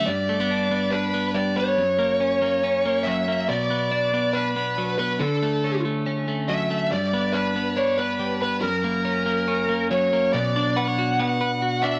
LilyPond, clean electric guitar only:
\new Staff \with { instrumentName = "Clean electric guitar" } { \time 4/4 \key b \minor \tempo 4 = 140 g,8 a16 b16 d'8 b8 d'8 b8 g8 b8 | fis,8 ais8 cis'8 ais8 cis'8 ais8 fis8 ais8 | b,8 b8 d'8 b8 d'8 b8 fis8 b8 | d8 a8 cis'8 a8 cis'8 a8 fis8 a8 |
g,8 b8 d'8 b8 d'8 b8 g8 b8 | fis,8 ais8 cis'8 ais8 cis'8 ais8 fis8 ais8 | b,8 d'8 b'16 cis''16 fis'8 b8 b'16 r16 fis'8 d'8 | }